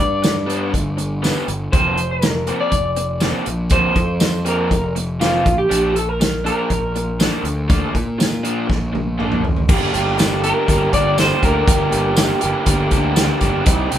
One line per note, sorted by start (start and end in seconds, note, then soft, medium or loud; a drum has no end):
0.00 0.75 G2 medium
0.00 1.43 D5 loud
0.22 muted overdriven electric guitar stroke soft
0.22 snare loud
0.22 closed hi-hat medium
0.22 tambourine loud
0.47 0.71 G3 medium
0.47 0.72 B3 medium
0.47 0.73 D4 medium
0.47 closed hi-hat medium
0.73 1.32 G1 medium
0.73 muted overdriven electric guitar stroke soft
0.73 kick medium
0.73 closed hi-hat medium
0.97 muted overdriven electric guitar stroke soft
0.97 closed hi-hat medium
1.22 1.48 G3 medium
1.22 1.47 B3 medium
1.22 1.46 D4 medium
1.22 snare medium
1.22 closed hi-hat medium
1.22 tambourine medium
1.48 1.68 G1 medium
1.48 muted overdriven electric guitar stroke soft
1.48 closed hi-hat medium
1.72 2.51 F1 medium
1.72 1.98 F3 medium
1.72 1.96 A#3 medium
1.72 1.95 C4 medium
1.72 2.11 C5 medium
1.72 kick loud
1.72 closed hi-hat medium
1.96 muted overdriven electric guitar stroke soft
1.96 closed hi-hat medium
2.11 2.62 A#4 medium
2.22 muted overdriven electric guitar stroke soft
2.22 snare loud
2.22 closed hi-hat medium
2.22 tambourine loud
2.47 2.71 F3 medium
2.47 2.71 A#3 medium
2.47 2.71 C4 medium
2.47 closed hi-hat medium
2.60 3.68 D5 medium
2.72 3.31 F1 medium
2.72 muted overdriven electric guitar stroke soft
2.72 kick medium
2.72 closed hi-hat medium
2.96 muted overdriven electric guitar stroke soft
2.96 closed hi-hat medium
3.20 3.46 F3 medium
3.20 3.46 A#3 medium
3.20 3.45 C4 medium
3.20 snare medium
3.20 closed hi-hat medium
3.20 tambourine medium
3.46 3.86 A#1 medium
3.46 muted overdriven electric guitar stroke soft
3.46 closed hi-hat medium
3.70 3.97 F3 medium
3.70 3.95 A#3 medium
3.70 3.94 C4 medium
3.70 4.48 C5 medium
3.70 kick loud
3.70 closed hi-hat medium
3.96 4.72 F2 medium
3.96 muted overdriven electric guitar stroke soft
3.96 kick medium
3.96 closed hi-hat medium
4.20 muted overdriven electric guitar stroke soft
4.20 snare loud
4.20 closed hi-hat medium
4.20 tambourine loud
4.45 4.70 F3 medium
4.45 4.70 A#3 medium
4.45 4.71 C4 medium
4.45 4.94 A#4 medium
4.45 closed hi-hat medium
4.71 5.46 F1 loud
4.71 muted overdriven electric guitar stroke soft
4.71 kick medium
4.71 closed hi-hat medium
4.96 muted overdriven electric guitar stroke soft
4.96 closed hi-hat medium
5.20 5.46 F3 medium
5.20 5.45 A#3 medium
5.20 5.45 C4 medium
5.20 5.58 F4 medium
5.20 snare medium
5.20 closed hi-hat medium
5.20 tambourine medium
5.45 5.66 A#1 medium
5.45 muted overdriven electric guitar stroke soft
5.45 kick medium
5.45 closed hi-hat medium
5.58 5.97 G4 medium
5.70 6.49 A#1 loud
5.70 5.95 F3 medium
5.70 5.95 A#3 medium
5.70 5.94 D4 medium
5.70 closed hi-hat medium
5.95 6.09 A4 loud
5.95 muted overdriven electric guitar stroke soft
5.95 closed hi-hat medium
6.09 6.45 A#4 loud
6.21 muted overdriven electric guitar stroke soft
6.21 snare loud
6.21 closed hi-hat medium
6.21 tambourine loud
6.44 6.70 F3 medium
6.44 6.70 A#3 medium
6.44 6.70 D4 medium
6.44 9.15 A#4 medium
6.44 closed hi-hat medium
6.70 7.29 A#1 medium
6.70 muted overdriven electric guitar stroke soft
6.70 kick medium
6.70 closed hi-hat medium
6.95 muted overdriven electric guitar stroke soft
6.95 closed hi-hat medium
7.20 7.45 F3 medium
7.20 7.44 A#3 medium
7.20 7.43 D4 medium
7.20 snare loud
7.20 closed hi-hat medium
7.20 tambourine loud
7.44 7.83 D2 medium
7.44 muted overdriven electric guitar stroke soft
7.44 closed hi-hat medium
7.68 7.94 F3 medium
7.68 7.94 A#3 medium
7.68 7.93 D4 medium
7.68 kick loud
7.68 closed hi-hat medium
7.94 8.71 A#2 medium
7.94 muted overdriven electric guitar stroke soft
7.94 kick medium
7.94 closed hi-hat medium
8.19 muted overdriven electric guitar stroke soft
8.19 snare loud
8.19 closed hi-hat medium
8.19 tambourine loud
8.44 8.66 F3 medium
8.44 8.67 A#3 medium
8.44 8.68 D4 medium
8.44 closed hi-hat medium
8.68 9.44 A#1 medium
8.68 muted overdriven electric guitar stroke soft
8.68 kick medium
8.68 snare soft
8.93 muted overdriven electric guitar stroke soft
8.93 high tom medium
9.18 9.44 F3 medium
9.18 9.42 A#3 medium
9.18 9.42 D4 medium
9.18 mid tom medium
9.32 mid tom medium
9.43 9.63 A1 medium
9.43 muted overdriven electric guitar stroke soft
9.43 floor tom medium
9.56 floor tom medium
9.69 9.88 G1 loud
9.69 13.62 G3 medium
9.69 9.91 A#3 medium
9.69 9.92 D4 medium
9.69 13.62 F4 medium
9.69 9.93 G4 medium
9.69 13.62 A#4 medium
9.69 kick loud
9.69 crash loud
9.69 shaker medium
9.92 10.52 G1 loud
9.92 10.17 A#3 medium
9.92 10.17 D4 medium
9.92 10.18 G4 loud
9.92 closed hi-hat medium
9.92 shaker medium
10.17 10.42 A#3 loud
10.17 10.43 D4 loud
10.17 10.44 G4 loud
10.17 snare loud
10.17 closed hi-hat loud
10.17 tambourine loud
10.17 shaker medium
10.42 10.66 A#3 medium
10.42 10.66 D4 medium
10.42 10.67 G4 medium
10.42 10.94 A#4 loud
10.42 closed hi-hat medium
10.42 shaker medium
10.67 10.88 G1 loud
10.67 10.92 A#3 medium
10.67 10.92 D4 loud
10.67 10.93 G4 loud
10.67 kick medium
10.67 closed hi-hat medium
10.67 shaker loud
10.92 11.32 G1 loud
10.92 11.17 A#3 medium
10.92 11.17 D4 medium
10.92 11.18 G4 medium
10.92 11.19 D5 loud
10.92 kick medium
10.92 closed hi-hat medium
10.92 shaker medium
11.17 11.41 A#3 medium
11.17 11.41 D4 loud
11.17 11.42 G4 loud
11.17 11.44 C5 loud
11.17 snare medium
11.17 closed hi-hat medium
11.17 tambourine medium
11.17 shaker medium
11.41 11.62 D2 medium
11.41 11.66 A#3 medium
11.41 11.65 D4 medium
11.41 11.67 G4 medium
11.41 12.89 A#4 medium
11.41 kick medium
11.41 closed hi-hat medium
11.41 shaker medium
11.66 11.87 G1 loud
11.66 11.90 A#3 medium
11.66 11.90 D4 medium
11.66 11.91 G4 medium
11.66 kick loud
11.66 closed hi-hat loud
11.66 shaker loud
11.91 12.31 G1 loud
11.91 12.16 A#3 medium
11.91 12.16 D4 medium
11.91 12.17 G4 medium
11.91 closed hi-hat medium
11.91 shaker medium
12.16 12.40 A#3 loud
12.16 12.40 D4 medium
12.16 12.42 G4 loud
12.16 snare loud
12.16 closed hi-hat loud
12.16 tambourine loud
12.16 shaker medium
12.41 12.53 G1 medium
12.41 12.66 A#3 medium
12.41 12.65 D4 medium
12.41 12.66 G4 medium
12.41 closed hi-hat medium
12.41 shaker medium
12.66 12.93 G1 medium
12.66 12.91 A#3 loud
12.66 12.91 D4 loud
12.66 12.92 G4 loud
12.66 kick medium
12.66 closed hi-hat loud
12.66 shaker loud
12.91 13.30 D2 loud
12.91 13.14 A#3 medium
12.91 13.14 D4 medium
12.91 13.16 G4 loud
12.91 kick medium
12.91 closed hi-hat medium
12.91 shaker medium
13.15 13.40 A#3 loud
13.15 13.40 D4 loud
13.15 13.41 G4 loud
13.15 snare loud
13.15 closed hi-hat loud
13.15 tambourine loud
13.15 shaker medium
13.40 13.61 G1 medium
13.40 13.65 A#3 medium
13.40 13.64 D4 medium
13.40 13.66 G4 medium
13.40 kick medium
13.40 closed hi-hat medium
13.40 shaker medium
13.65 13.86 C2 loud
13.65 13.98 C3 medium
13.65 13.98 A#3 medium
13.65 13.89 C4 medium
13.65 13.90 D#4 medium
13.65 13.98 D#4 medium
13.65 13.91 G4 medium
13.65 kick loud
13.65 closed hi-hat loud
13.65 shaker medium
13.90 13.98 C2 medium
13.90 13.98 C4 medium
13.90 13.98 D#4 medium
13.90 13.98 G4 medium
13.90 closed hi-hat medium
13.90 shaker medium